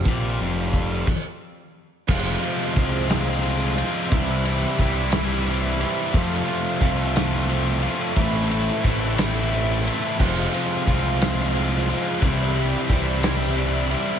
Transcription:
0.04 picked electric bass A#1, distorted electric guitar A#2, overdriven electric guitar F3 G3 C4 G4, kick, closed hi-hat
0.39 picked electric bass F1, distorted electric guitar F2, closed hi-hat
0.73 kick, closed hi-hat
1.07 kick, crash
2.08 picked electric bass F1, distorted electric guitar F2 C3 F3 G#3, string machine G#4 C5 F5 C6, kick, crash
2.12 distorted electric guitar C4 F4
2.43 distorted electric guitar F3 G#3 C4 F4, ride
2.76 picked electric bass C2, distorted electric guitar F3 G#3 C4, kick, ride
2.82 distorted electric guitar F4
3.07 overdriven electric guitar F2 C3 F3 G#3 C4 F4, snare, ride
3.13 distorted electric guitar F3 G#3 C4 F4
3.43 distorted electric guitar F3 G#3 C4, ride
3.48 distorted electric guitar F4
3.78 distorted electric guitar G#3 C4 F4, ride
3.82 distorted electric guitar F3
4.11 picked electric bass C2, distorted electric guitar C3 E3 G3 C4 E4, string machine G4 D5 E5, kick, ride
4.45 distorted electric guitar C4 E4, ride
4.49 distorted electric guitar G3
4.78 picked electric bass C2, distorted electric guitar E3 G3, kick, ride
4.82 distorted electric guitar C4 E4
5.12 overdriven electric guitar C3 E3 G3, distorted electric guitar C4 E4, snare, ride
5.18 distorted electric guitar G3
5.46 distorted electric guitar E3 G3 C4, ride
5.50 distorted electric guitar E4
5.80 distorted electric guitar G3 C4 E4, ride
6.13 distorted electric guitar F2 C3 F3 A3 C4 F4, picked electric bass F2, string machine A4 C5 F5, kick, ride
6.47 distorted electric guitar F3 A3 C4 F4, ride
6.80 picked electric bass C2, distorted electric guitar F3 A3 C4 F4, kick, ride
7.16 overdriven electric guitar F2 C3, distorted electric guitar F3 A3 C4 F4, snare, ride
7.49 distorted electric guitar F3 A3 C4 F4, ride
7.83 distorted electric guitar F3 A3 C4 F4, ride
8.16 picked electric bass A1, distorted electric guitar A2 E3 A3 C4, string machine E5 G5 C6, kick, ride
8.21 distorted electric guitar E4
8.50 distorted electric guitar A3 C4 E4, ride
8.83 picked electric bass A1, distorted electric guitar E3 A3 C4 E4, kick, ride
9.16 overdriven electric guitar A2 E3, distorted electric guitar A3 C4 E4, snare, ride
9.51 distorted electric guitar E3 A3 C4 E4, ride
9.83 distorted electric guitar C4 E4, ride
9.88 distorted electric guitar A3
10.16 picked electric bass F1, distorted electric guitar F2 C3 F3 G#3 C4 F4, kick, crash
10.21 string machine G#4 C5 F5 C6
10.51 distorted electric guitar F3 G#3 C4 F4, ride
10.85 picked electric bass C2, distorted electric guitar F3 G#3 C4 F4, kick, ride
10.93 overdriven electric guitar F4
11.20 distorted electric guitar F3 G#3 C4 F4, snare, ride
11.26 overdriven electric guitar F2 C3
11.53 distorted electric guitar F3 G#3 C4 F4, ride
11.87 distorted electric guitar F3 G#3 C4 F4, ride
12.20 picked electric bass C2, distorted electric guitar C3 E3 G3 C4, string machine G4 D5 E5, kick, ride
12.24 distorted electric guitar E4
12.55 distorted electric guitar G3 C4 E4, ride
12.88 picked electric bass C2, distorted electric guitar E3 G3 C4 E4, kick, ride
13.23 overdriven electric guitar E3, distorted electric guitar G3 C4 E4, snare, ride
13.27 overdriven electric guitar C3
13.56 distorted electric guitar E3 G3 C4 E4, ride
13.90 distorted electric guitar G3 C4 E4, ride

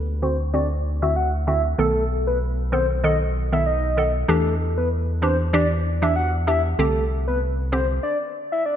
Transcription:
Already playing: analog synth bass D2
0.22 synth pluck D3 C4 F#4, soft synth lead C5
0.53 synth pluck D3 C4 F#4, soft synth lead D5
1.02 synth pluck D3 C4 F#4, soft synth lead E5
1.16 soft synth lead F#5
1.47 synth pluck D3 C4 F#4, soft synth lead E5
1.78 analog synth bass B1, synth pluck D#3 B3 A4, soft synth lead A4
2.27 soft synth lead B4
2.72 synth pluck D#3 B3 A4, soft synth lead C5
3.04 synth pluck D#3 B3 A4, soft synth lead D#5
3.52 synth pluck D#3 B3 A4, soft synth lead E5
3.66 soft synth lead D#5
3.97 synth pluck D#3 B3 A4
4.28 analog synth bass E2, synth pluck E3 D4 G4, soft synth lead A4
4.77 soft synth lead B4
5.22 synth pluck E3 D4 G4, soft synth lead C5
5.53 synth pluck E3 D4 G4, soft synth lead D5
6.02 synth pluck E3 D4 G4, soft synth lead E5
6.16 soft synth lead F#5
6.47 synth pluck E3 D4 G4, soft synth lead E5
6.79 analog synth bass C2, synth pluck D3 C4 G4, soft synth lead A4
7.28 soft synth lead B4
7.72 synth pluck D3 C4 G4, soft synth lead C5
8.03 soft synth lead D5
8.52 soft synth lead E5
8.66 soft synth lead D5

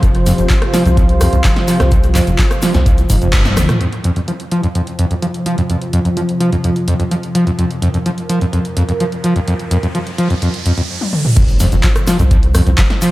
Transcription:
Already playing: analog synth pad C3 F3 F4 C5
0.03 sub bass F1, acid bass F2, kick, closed hi-hat, shaker
0.15 closed hi-hat
0.26 acid bass F2, snare, open hi-hat, shaker
0.38 sub bass F1, acid bass F2, closed hi-hat, shaker
0.50 acid bass F3, kick, clap, closed hi-hat, shaker
0.62 cross-stick, closed hi-hat
0.74 acid bass F3, snare, open hi-hat, shaker
0.85 sub bass C2, acid bass F2, closed hi-hat, shaker
0.97 acid bass F2, kick, closed hi-hat, shaker
1.09 closed hi-hat
1.21 acid bass F2, cross-stick, open hi-hat, shaker
1.33 sub bass C2, acid bass F2, closed hi-hat, shaker
1.44 sub bass F1, acid bass F3, kick, snare, clap, closed hi-hat, shaker
1.56 snare, closed hi-hat
1.68 acid bass F3, open hi-hat, shaker
1.80 sub bass C2, acid bass F2, cross-stick, snare, closed hi-hat, shaker
1.91 acid bass F2, kick, closed hi-hat, shaker
2.03 closed hi-hat, shaker
2.15 acid bass F2, snare, clap, open hi-hat, shaker
2.27 sub bass F1, acid bass F2, closed hi-hat, shaker
2.38 acid bass F3, kick, clap, closed hi-hat, shaker
2.51 cross-stick, closed hi-hat, shaker
2.62 acid bass F3, snare, open hi-hat, shaker
2.74 sub bass C2, acid bass F2, snare, closed hi-hat, shaker
2.86 acid bass F2, kick, closed hi-hat, shaker
2.98 closed hi-hat, shaker
3.10 sub bass F1, acid bass G#2, kick, open hi-hat, shaker
3.22 acid bass F2, closed hi-hat, shaker
3.33 acid bass G2, kick, snare, clap, closed hi-hat, shaker
3.45 snare, closed hi-hat, high tom, shaker
3.57 sub bass G#1, acid bass D#2, cross-stick, open hi-hat, mid tom, shaker
3.69 acid bass F3, cross-stick, snare, closed hi-hat, mid tom, shaker
3.81 acid bass F2, analog synth pad C3 F3 F4 C5, closed hi-hat
3.93 closed hi-hat
4.04 acid bass F2, closed hi-hat
4.16 acid bass F2, closed hi-hat
4.28 acid bass F3, closed hi-hat
4.40 closed hi-hat
4.52 acid bass F3, closed hi-hat
4.63 acid bass F2, closed hi-hat
4.75 acid bass F2, closed hi-hat
4.87 closed hi-hat
4.99 acid bass F2, closed hi-hat
5.11 acid bass F2, closed hi-hat
5.22 acid bass F3, closed hi-hat
5.34 closed hi-hat
5.46 acid bass F3, closed hi-hat
5.58 acid bass F2, closed hi-hat
5.70 acid bass F2, closed hi-hat
5.82 closed hi-hat
5.93 acid bass F2, closed hi-hat
6.05 acid bass F2, closed hi-hat
6.17 acid bass F3, closed hi-hat
6.29 closed hi-hat
6.40 acid bass F3, closed hi-hat
6.52 acid bass F2, closed hi-hat
6.64 acid bass F2, closed hi-hat
6.76 closed hi-hat
6.88 acid bass F2, closed hi-hat
7.00 acid bass F2, closed hi-hat
7.11 acid bass F3, closed hi-hat
7.23 closed hi-hat
7.35 acid bass F3, closed hi-hat
7.47 acid bass F2, closed hi-hat
7.58 acid bass F2, analog synth pad A#4, closed hi-hat, riser
7.71 closed hi-hat
7.82 acid bass F2, closed hi-hat
7.94 acid bass F2, closed hi-hat
8.06 acid bass F3, closed hi-hat
8.18 closed hi-hat
8.29 acid bass F3, closed hi-hat
8.41 acid bass F2, closed hi-hat
8.53 acid bass F2, closed hi-hat
8.65 closed hi-hat
8.77 acid bass F2, closed hi-hat
8.89 acid bass F2, closed hi-hat
9.00 acid bass F3, closed hi-hat
9.12 closed hi-hat
9.24 acid bass F3, closed hi-hat
9.36 acid bass F2, closed hi-hat
9.48 acid bass F2, closed hi-hat
9.59 closed hi-hat
9.71 acid bass F2, closed hi-hat
9.83 acid bass F2, closed hi-hat
9.95 acid bass F3, closed hi-hat
10.07 closed hi-hat
10.18 acid bass F3, closed hi-hat
10.30 acid bass F2, closed hi-hat
10.42 acid bass F2, closed hi-hat
10.54 closed hi-hat
10.66 acid bass F2, closed hi-hat
10.77 acid bass F2, closed hi-hat
11.01 high tom
11.13 mid tom
11.25 mid tom
11.36 sub bass F1, acid bass F2, analog synth pad C3 F3 F4 C5, kick, closed hi-hat, crash, impact, shaker
11.48 closed hi-hat, shaker
11.60 acid bass F2, snare, open hi-hat, shaker
11.72 sub bass F1, acid bass F2, closed hi-hat, shaker
11.83 acid bass F3, kick, clap, closed hi-hat, shaker
11.95 cross-stick, closed hi-hat, shaker
12.07 acid bass F3, snare, open hi-hat, shaker
12.19 sub bass C2, acid bass F2, closed hi-hat, shaker
12.31 acid bass F2, kick, closed hi-hat, shaker
12.43 closed hi-hat
12.55 acid bass F2, cross-stick, open hi-hat, shaker
12.66 sub bass C2, acid bass F2, closed hi-hat, shaker
12.78 sub bass F1, acid bass F3, kick, snare, clap, closed hi-hat, shaker
12.90 snare, closed hi-hat
13.01 acid bass F3, open hi-hat, shaker

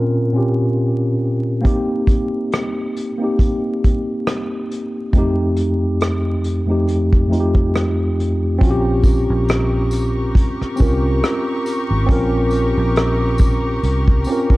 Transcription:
Already playing: tine electric piano A#2 C4 C#4 F4 A#4
0.32 tine electric piano A#2 C4 C#4 F4
0.37 tine electric piano G4
1.61 tine electric piano A#3 C4 D#4, kick
1.66 tine electric piano G4, closed hi-hat
2.07 kick, closed hi-hat
2.52 cross-stick, closed hi-hat
2.97 closed hi-hat
3.18 tine electric piano A#3 C4 D#4
3.24 tine electric piano G4
3.39 kick, closed hi-hat
3.84 kick, closed hi-hat
4.27 cross-stick, closed hi-hat
4.71 closed hi-hat
5.13 tine electric piano F2 A3 C4, kick, closed hi-hat
5.17 tine electric piano D#4 G4
5.56 closed hi-hat
6.01 cross-stick, closed hi-hat
6.44 closed hi-hat
6.66 tine electric piano F2 A3 C4 D#4
6.71 tine electric piano G4
6.88 closed hi-hat
7.13 kick
7.28 tine electric piano F2 A3 C4
7.32 tine electric piano D#4 F4, closed hi-hat
7.40 tine electric piano G4
7.55 kick
7.75 cross-stick, closed hi-hat
8.20 closed hi-hat
8.58 fingered electric bass A#1, tine electric piano C4 C#4 F4, string section G4 A#4 A#5 C#6, kick
8.63 tine electric piano F#4, closed hi-hat
8.71 tine electric piano G4
9.04 kick, closed hi-hat, tambourine
9.30 fingered electric bass A#1
9.48 cross-stick, closed hi-hat
9.91 closed hi-hat, tambourine
10.35 kick, closed hi-hat
10.61 muted fingered electric bass stroke, cross-stick
10.76 tine electric piano C4 C#4 F4, tambourine
10.80 fingered electric bass C2, tine electric piano A#4, kick, closed hi-hat
11.24 cross-stick, closed hi-hat
11.66 closed hi-hat, tambourine
11.91 fingered electric bass G#1
12.06 fingered electric bass A#1, tine electric piano C4 C#4 F4, kick, closed hi-hat
12.12 tine electric piano A#4
12.51 closed hi-hat, tambourine
12.77 fingered electric bass A#1
12.96 cross-stick, closed hi-hat
13.38 kick, closed hi-hat, tambourine
13.83 fingered electric bass C2, closed hi-hat
14.08 kick
14.24 tine electric piano C4, closed hi-hat, tambourine
14.29 tine electric piano C#4 F4 A#4
14.50 kick

